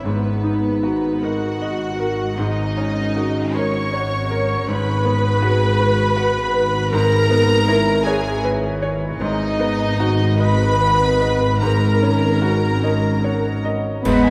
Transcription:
Already playing: B4
0.04 G#1 G#2 B3 B4
0.43 D#4
0.83 F#4 A#5
1.23 F#4 A#4 D#5 F#5
1.62 D#5 F#5
1.99 A#4
2.37 G#2 D#4 D#5
2.77 C#4
3.16 F#4 A#4
3.55 A#4 C#5 C#6
3.94 C#5 F#5
4.30 A#4
4.67 G#1 G#2 B4 B5
5.05 B3
5.42 F#4 G#4
5.80 F#4 B4
6.16 F#4 F#5
6.54 B4
6.92 G#2 A#4 A#5
7.30 B3
7.68 E4 C#5
8.05 G#4 B4 C#5 G#5
8.44 B4 E5
8.82 C#5
9.20 G#1 G#2 D#4 D#5
9.59 B3
9.99 F#4 D#5
10.39 B4 D#5 B5
10.81 B4 F#5
11.21 D#5
11.61 G#2 A#4 A#5
12.02 C#4
12.42 F#4 D#5
12.83 C#5 D#5
13.24 C#5 F#5
13.65 D#5
14.04 G#1 G#2 B3 B4 D#5 F#5 B5, concert bass drum, crash
14.24 G#5

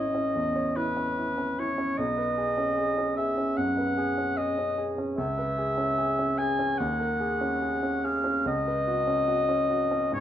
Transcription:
Already playing: A1 C#4 E4 C#5 D#5
0.15 C#4
0.35 E2
0.56 C#5
0.76 E4 B4
0.97 C#4
1.18 E4
1.38 C#4
1.59 E4 C#5
1.78 C#4
1.98 B1 D#5
2.17 B4
2.38 G#4
2.58 C#4
2.77 G#4
2.98 C#4
3.16 G#4 E5
3.37 C#4
3.57 F#2 F#5
3.77 B4
3.98 G#4
4.18 C#4
4.37 G#4 D#5
4.58 C#4
4.78 G#4
4.98 C#4
5.17 C#2 E5
5.38 B4
5.58 G#4
5.78 C#4
5.98 G#4
6.19 C#4
6.38 G#4 G#5
6.59 C#4
6.78 D#2 F#5
7.00 A#4
7.20 G#4
7.41 C#4
7.62 G#4
7.83 C#4
8.04 G#4 F5
8.24 C#4
8.46 C#2 D#5
8.67 B4
8.87 F#4
9.07 C#4
9.28 F#4
9.49 C#4
9.70 F#4
9.91 C#4
10.12 G#2 C#5

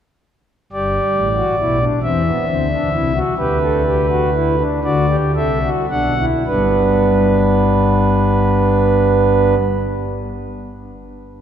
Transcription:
0.73 G1 G2 G4 D5
1.15 A1 A2
1.37 F#4
1.59 B1 B2 E4
1.81 D4
2.02 E2 E3 C4 E5
2.26 B3
2.48 D2 D3 C4
2.70 D4
2.93 C2 C3 E4
3.15 F#4
3.38 D2 D3 G4 B4
3.62 A4
3.86 G4
4.10 F#4
4.34 E4
4.59 D4
4.84 D2 D3 F#4 D5
5.09 G4
5.35 C2 C3 A4 E5
5.63 F#4
5.90 B1 B2 D4 F#5
6.19 E4
6.47 G1 G2 G3 B3 D4 B4

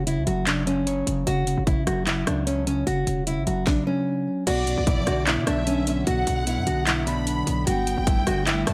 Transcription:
Already playing: F#1 C#5
0.07 C#3 E4, closed hi-hat
0.18 C#2
0.27 F#1 F#3 F#4, closed hi-hat
0.47 C#3 D4, clap, closed hi-hat
0.67 C#3 C#4, closed hi-hat
0.87 C#5, closed hi-hat
1.07 F#1 C#3, closed hi-hat
1.27 F#1 C#3 F#4, closed hi-hat
1.47 C#3, closed hi-hat
1.57 F#1
1.67 C#3 E4, kick, closed hi-hat
1.78 A1
1.87 F#1 F#3 F#4, cross-stick, closed hi-hat
2.07 C#3 E4, clap, closed hi-hat
2.27 C#2 C#3 D4, cross-stick, closed hi-hat
2.47 C#4 C#5, closed hi-hat
2.67 C#3 C#4, closed hi-hat
2.87 F#1 C#3 F#4, closed hi-hat
3.07 E1 C#3, closed hi-hat
3.27 C#3 E4, closed hi-hat
3.38 A1
3.47 F#1 F#3 F#4, closed hi-hat
3.67 D4, kick, snare
3.87 C#4
4.47 B1 B2 D3 F#3 B3 F#4 D5, closed hi-hat, crash
4.67 B2, closed hi-hat
4.78 B1
4.87 B2 E4, kick, closed hi-hat
4.98 F#3
5.07 B1 D3 F#4, cross-stick, closed hi-hat
5.27 B2 E4, clap, closed hi-hat
5.38 B2
5.47 B1 B2 D4 E5, cross-stick, closed hi-hat
5.67 C#4 D4, closed hi-hat
5.87 B2 C#4, closed hi-hat
6.07 B1 B2 F#4 F#5, closed hi-hat
6.27 B1 B2, closed hi-hat
6.47 B2 E4, closed hi-hat
6.58 F#2
6.67 B1 D3 F#4, closed hi-hat
6.87 B2 E4, clap, closed hi-hat
7.07 B2 D4 B5, closed hi-hat
7.27 D4, closed hi-hat
7.47 B1 B2, closed hi-hat
7.67 G1 G2 G3 A3 F#4 G5, closed hi-hat
7.87 G2, closed hi-hat
7.98 G1
8.07 G2 E4, kick, closed hi-hat
8.18 B1
8.27 G1 D3 F#4, cross-stick, closed hi-hat
8.47 G2 E4, clap, closed hi-hat
8.66 D2 G2 D4 A5, cross-stick, closed hi-hat

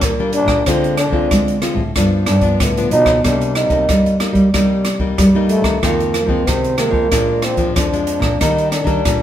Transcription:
Already playing: G3 A#3 D4
0.01 A#2 A#3, kick, cross-stick, closed hi-hat
0.20 G3 A#3 D4
0.33 D4, closed hi-hat
0.45 A#2, kick, cross-stick, closed hi-hat
0.66 D3 G#3 C4 F4, kick, cross-stick, closed hi-hat
0.84 closed hi-hat
0.97 D4, cross-stick, closed hi-hat
1.10 D3 G#3 C4 F4, kick
1.31 D3 G#3, kick, cross-stick, closed hi-hat
1.48 closed hi-hat
1.62 G#3 C4 F4, cross-stick, closed hi-hat
1.74 A2, kick
1.96 G2 F3 B3 D4, kick, cross-stick, closed hi-hat
2.26 G2 D4, cross-stick, closed hi-hat
2.41 F3 B3 D4, kick, closed hi-hat
2.60 A2 D3 B3, kick, cross-stick, closed hi-hat
2.77 F3 B3 D4, closed hi-hat
2.91 B2 D#4, closed hi-hat
3.06 kick, cross-stick, closed hi-hat
3.24 C3 G3 A#3 D4, kick, cross-stick, closed hi-hat
3.41 closed hi-hat
3.55 D#4, cross-stick, closed hi-hat
3.68 C3 G3 A#3 D#4, kick, closed hi-hat
3.89 G2 G3, kick, cross-stick, closed hi-hat
4.06 closed hi-hat
4.20 G3 A#3 D#4, cross-stick, closed hi-hat
4.32 G3, kick, closed hi-hat
4.54 C3 G3 A#3 D#4, kick, cross-stick, closed hi-hat
4.85 cross-stick, closed hi-hat
5.00 G3 A#3 D#4, kick
5.18 G2 G3, kick, cross-stick, closed hi-hat
5.35 G3 A#3 D#4
5.49 A3, closed hi-hat
5.61 D#3, kick, cross-stick, closed hi-hat
5.82 F2 D#3 F3 G#3 A#3 C4, kick, cross-stick, closed hi-hat
6.00 closed hi-hat
6.14 cross-stick, closed hi-hat
6.26 D#3 F3 G#3 C4, kick
6.47 C3 C4, kick, cross-stick, closed hi-hat
6.64 closed hi-hat
6.78 D#3 G#3 A#3 C4, cross-stick, closed hi-hat
6.91 F3, kick
7.11 A#2 F3 G#3 D4, kick, cross-stick, closed hi-hat
7.42 C4, cross-stick, closed hi-hat
7.57 F3 G#3 D4, kick, closed hi-hat
7.76 F2 F3 D4, kick, cross-stick, closed hi-hat
7.93 F3 G#3 D4, closed hi-hat
8.07 closed hi-hat
8.19 A#2, kick, cross-stick, closed hi-hat
8.41 D#3 G3 A#3 D#4, kick, cross-stick, closed hi-hat
8.58 closed hi-hat
8.71 D4, cross-stick, closed hi-hat
8.84 D#3 G3 A#3 D4, kick, closed hi-hat
9.05 A#2, kick, cross-stick, closed hi-hat

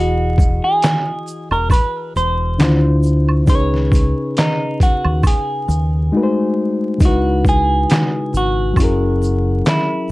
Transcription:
Already playing: E1 E3 E4 F#4 G#4 D#5
0.38 kick, shaker
0.64 G#4
0.82 snare, clap, closed hi-hat, shaker
1.27 shaker
1.51 E1 A#4, high woodblock
1.70 B4, kick, closed hi-hat, high woodblock, shaker
2.16 E1 C5, shaker
2.58 D2 D3 D4 E4 F4, snare, clap, closed hi-hat, shaker
2.63 C5
3.03 shaker
3.06 shaker
3.29 high woodblock
3.43 C#3 C#4, shaker
3.47 C#2 D#4 G#4 C#5, kick, closed hi-hat
3.53 B4
3.74 snare
3.92 kick, closed hi-hat, shaker
3.95 shaker
4.37 D#4, snare, clap, closed hi-hat, shaker
4.80 F#4, kick, closed hi-hat, shaker
5.05 D#2, high woodblock
5.23 G#4, kick, closed hi-hat, high woodblock, shaker
5.68 D#2, shaker
5.70 shaker
6.12 G#3 A3 D#4 F#4
6.17 B4
6.23 C5
6.98 C#2 C#3 G#3 D#4, kick, closed hi-hat, shaker
7.03 E4 F#4 B4
7.45 kick, shaker
7.48 G#4, shaker
7.90 snare, clap, closed hi-hat, shaker
8.34 G#1 F#4, shaker
8.74 F#1 F#3 C#4, kick, high woodblock, shaker
8.79 E4 G#4, closed hi-hat
8.84 A#4
9.22 shaker
9.66 E4, snare, clap, closed hi-hat, shaker

